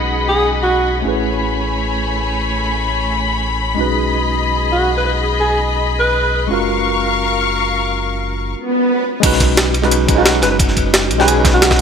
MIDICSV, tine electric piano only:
0, 0, Header, 1, 2, 480
1, 0, Start_track
1, 0, Tempo, 340909
1, 1480, Time_signature, 4, 2, 24, 8
1, 16631, End_track
2, 0, Start_track
2, 0, Title_t, "Tine electric piano"
2, 0, Program_c, 0, 4
2, 0, Note_on_c, 0, 56, 70
2, 0, Note_on_c, 0, 61, 61
2, 0, Note_on_c, 0, 63, 60
2, 0, Note_on_c, 0, 66, 65
2, 0, Note_on_c, 0, 71, 75
2, 1430, Note_off_c, 0, 56, 0
2, 1439, Note_on_c, 0, 57, 70
2, 1440, Note_off_c, 0, 61, 0
2, 1451, Note_off_c, 0, 63, 0
2, 1461, Note_on_c, 0, 61, 66
2, 1462, Note_off_c, 0, 66, 0
2, 1473, Note_off_c, 0, 71, 0
2, 1482, Note_on_c, 0, 64, 65
2, 1502, Note_on_c, 0, 68, 63
2, 1523, Note_on_c, 0, 71, 76
2, 5272, Note_off_c, 0, 57, 0
2, 5274, Note_on_c, 0, 56, 71
2, 5280, Note_off_c, 0, 61, 0
2, 5294, Note_off_c, 0, 64, 0
2, 5297, Note_on_c, 0, 61, 62
2, 5304, Note_off_c, 0, 68, 0
2, 5315, Note_off_c, 0, 71, 0
2, 5317, Note_on_c, 0, 63, 65
2, 5340, Note_on_c, 0, 66, 65
2, 5359, Note_on_c, 0, 71, 77
2, 9099, Note_off_c, 0, 56, 0
2, 9116, Note_on_c, 0, 56, 70
2, 9121, Note_off_c, 0, 61, 0
2, 9131, Note_off_c, 0, 63, 0
2, 9137, Note_on_c, 0, 61, 65
2, 9143, Note_off_c, 0, 66, 0
2, 9153, Note_off_c, 0, 71, 0
2, 9159, Note_on_c, 0, 65, 63
2, 9181, Note_on_c, 0, 66, 66
2, 9202, Note_on_c, 0, 70, 78
2, 12938, Note_off_c, 0, 56, 0
2, 12955, Note_on_c, 0, 56, 96
2, 12961, Note_off_c, 0, 61, 0
2, 12973, Note_off_c, 0, 65, 0
2, 12977, Note_on_c, 0, 61, 87
2, 12983, Note_off_c, 0, 66, 0
2, 12994, Note_off_c, 0, 70, 0
2, 12998, Note_on_c, 0, 63, 89
2, 13018, Note_on_c, 0, 66, 92
2, 13041, Note_on_c, 0, 71, 110
2, 13698, Note_off_c, 0, 56, 0
2, 13709, Note_off_c, 0, 61, 0
2, 13719, Note_off_c, 0, 63, 0
2, 13729, Note_off_c, 0, 66, 0
2, 13741, Note_off_c, 0, 71, 0
2, 13829, Note_on_c, 0, 56, 93
2, 13839, Note_on_c, 0, 61, 79
2, 13850, Note_on_c, 0, 63, 81
2, 13860, Note_on_c, 0, 66, 86
2, 13870, Note_on_c, 0, 71, 98
2, 14164, Note_off_c, 0, 56, 0
2, 14169, Note_off_c, 0, 61, 0
2, 14175, Note_off_c, 0, 63, 0
2, 14180, Note_off_c, 0, 66, 0
2, 14182, Note_on_c, 0, 56, 75
2, 14185, Note_off_c, 0, 71, 0
2, 14193, Note_on_c, 0, 61, 70
2, 14204, Note_on_c, 0, 63, 69
2, 14213, Note_on_c, 0, 66, 66
2, 14224, Note_on_c, 0, 71, 81
2, 14271, Note_off_c, 0, 56, 0
2, 14288, Note_on_c, 0, 56, 89
2, 14293, Note_off_c, 0, 61, 0
2, 14298, Note_off_c, 0, 63, 0
2, 14303, Note_off_c, 0, 66, 0
2, 14308, Note_off_c, 0, 71, 0
2, 14309, Note_on_c, 0, 61, 86
2, 14331, Note_on_c, 0, 63, 83
2, 14352, Note_on_c, 0, 66, 84
2, 14373, Note_on_c, 0, 71, 98
2, 15717, Note_off_c, 0, 56, 0
2, 15728, Note_off_c, 0, 61, 0
2, 15739, Note_off_c, 0, 63, 0
2, 15746, Note_on_c, 0, 56, 100
2, 15749, Note_off_c, 0, 66, 0
2, 15758, Note_on_c, 0, 61, 95
2, 15760, Note_off_c, 0, 71, 0
2, 15768, Note_on_c, 0, 63, 92
2, 15778, Note_on_c, 0, 66, 96
2, 15790, Note_on_c, 0, 71, 115
2, 15946, Note_off_c, 0, 56, 0
2, 15963, Note_on_c, 0, 56, 82
2, 15969, Note_off_c, 0, 61, 0
2, 15977, Note_off_c, 0, 63, 0
2, 15982, Note_off_c, 0, 66, 0
2, 15986, Note_on_c, 0, 61, 76
2, 15988, Note_off_c, 0, 71, 0
2, 16007, Note_on_c, 0, 63, 73
2, 16029, Note_on_c, 0, 66, 75
2, 16048, Note_on_c, 0, 71, 93
2, 16631, Note_off_c, 0, 56, 0
2, 16631, Note_off_c, 0, 61, 0
2, 16631, Note_off_c, 0, 63, 0
2, 16631, Note_off_c, 0, 66, 0
2, 16631, Note_off_c, 0, 71, 0
2, 16631, End_track
0, 0, End_of_file